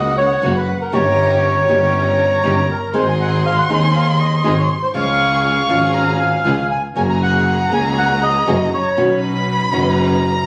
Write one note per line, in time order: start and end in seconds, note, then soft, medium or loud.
0.00 0.39 C#2 loud
0.00 0.38 A#3 medium
0.00 0.38 C#4 medium
0.00 0.38 F#4 loud
0.00 0.16 D#5 medium
0.00 0.95 F#5 medium
0.18 0.53 C#5 medium
0.42 0.64 F#1 loud
0.42 0.51 C#3 medium
0.42 0.51 F#3 medium
0.42 0.51 A#3 medium
0.42 0.64 A#3 medium
0.42 0.64 C#4 medium
0.42 0.51 C#4 medium
0.42 0.52 F#4 loud
0.42 0.64 F#4 medium
0.56 0.79 B4 medium
0.81 0.93 A#4 medium
0.92 1.65 G1 loud
0.92 1.02 C#3 medium
0.92 1.02 G3 medium
0.92 1.02 A#3 medium
0.92 1.65 C#4 medium
0.92 1.02 D#4 loud
0.92 1.65 D#4 medium
0.92 1.65 G4 loud
0.92 1.02 G4 loud
0.92 2.66 C#5 loud
0.92 1.44 A#5 loud
1.44 2.90 A#5 loud
1.68 2.40 G1 loud
1.68 1.77 C#3 medium
1.68 1.77 G3 medium
1.68 1.77 A#3 medium
1.68 2.40 C#4 medium
1.68 1.77 D#4 loud
1.68 2.40 D#4 medium
1.68 2.40 G4 medium
1.68 1.78 G4 medium
2.43 2.65 G1 loud
2.43 2.52 C#3 medium
2.43 2.52 G3 medium
2.43 2.52 A#3 medium
2.43 2.65 C#4 medium
2.43 2.53 D#4 medium
2.43 2.65 D#4 medium
2.43 2.65 G4 medium
2.43 2.53 G4 medium
2.71 2.96 A#4 medium
2.94 3.66 G#1 loud
2.94 3.03 D#3 medium
2.94 3.03 G#3 loud
2.94 3.03 C4 loud
2.94 3.66 C4 medium
2.94 3.03 D#4 loud
2.94 3.66 D#4 medium
2.94 3.03 G#4 loud
2.94 3.66 G#4 loud
2.94 3.08 C5 medium
2.94 4.95 C6 loud
3.09 3.14 G#5 medium
3.21 3.43 F#5 medium
3.46 3.57 F5 loud
3.59 3.70 F#5 medium
3.69 4.41 D#2 loud
3.69 3.78 D#3 medium
3.69 3.78 G#3 medium
3.69 3.78 C4 loud
3.69 4.41 C4 medium
3.69 4.41 D#4 medium
3.69 3.78 D#4 loud
3.69 3.78 G#4 loud
3.69 4.41 G#4 loud
3.84 3.89 G#5 medium
3.96 4.07 F5 loud
4.21 4.55 D#5 medium
4.44 4.65 G#1 loud
4.44 4.53 D#3 medium
4.44 4.53 G#3 medium
4.44 4.53 C4 medium
4.44 4.66 C4 medium
4.44 4.53 D#4 medium
4.44 4.66 D#4 medium
4.44 4.53 G#4 medium
4.44 4.66 G#4 medium
4.59 4.70 C#5 medium
4.83 4.88 C5 medium
4.94 5.66 C#2 loud
4.94 5.03 C#3 medium
4.94 5.03 F3 medium
4.94 5.03 G#3 medium
4.94 5.65 C#4 loud
4.94 5.03 C#4 medium
4.94 5.66 F4 medium
4.94 5.04 F4 medium
4.94 5.66 G#4 loud
4.94 6.67 F5 loud
4.94 5.44 C#6 loud
5.44 5.96 C#6 loud
5.69 6.41 G#1 loud
5.69 5.78 C#3 medium
5.69 5.78 F3 medium
5.69 5.78 G#3 medium
5.69 6.41 C#4 medium
5.69 5.79 C#4 medium
5.69 6.41 F4 medium
5.69 5.79 F4 medium
5.69 6.41 G#4 loud
5.94 6.21 A#5 loud
6.20 6.70 G#5 medium
6.44 6.66 C#2 loud
6.44 6.54 C#3 medium
6.44 6.54 F3 medium
6.44 6.54 G#3 medium
6.44 6.66 C#4 medium
6.44 6.54 C#4 medium
6.44 6.66 F4 medium
6.44 6.54 F4 loud
6.44 6.66 G#4 medium
6.71 6.82 G#5 medium
6.95 7.68 F#1 loud
6.95 7.05 F#3 medium
6.95 7.68 A#3 medium
6.95 7.05 A#3 medium
6.95 7.05 C#4 medium
6.95 7.68 F#4 medium
6.95 7.68 G#4 loud
6.95 7.05 G#4 loud
6.95 7.02 G#5 loud
6.95 8.99 A#5 loud
7.10 7.15 A#5 medium
7.23 7.74 F#5 loud
7.71 8.44 C#2 loud
7.71 7.81 F#3 medium
7.71 8.43 A#3 medium
7.71 7.81 A#3 medium
7.71 7.81 C#4 medium
7.71 8.44 F#4 medium
7.71 8.44 G#4 loud
7.71 7.81 G#4 medium
7.71 7.96 G#5 medium
7.98 8.24 F#5 loud
8.23 8.69 D#5 loud
8.46 8.69 F#1 loud
8.46 8.56 F#3 medium
8.46 8.56 A#3 medium
8.46 8.68 A#3 medium
8.46 8.56 C#4 medium
8.46 8.68 F#4 medium
8.46 8.56 G#4 medium
8.46 8.69 G#4 medium
8.74 9.20 C#5 medium
8.97 9.69 B1 loud
8.97 9.06 B2 medium
8.97 9.06 D#3 medium
8.97 9.69 C#4 medium
8.97 9.06 C#4 loud
8.97 9.69 D#4 medium
8.97 9.07 F#4 loud
8.97 9.69 B4 loud
8.97 10.00 B5 loud
9.72 10.45 F#1 loud
9.72 9.82 B2 medium
9.72 9.82 D#3 medium
9.72 10.44 C#4 loud
9.72 9.82 C#4 loud
9.72 10.44 D#4 medium
9.72 9.82 F#4 medium
9.72 10.44 B4 loud
9.98 10.46 A#5 loud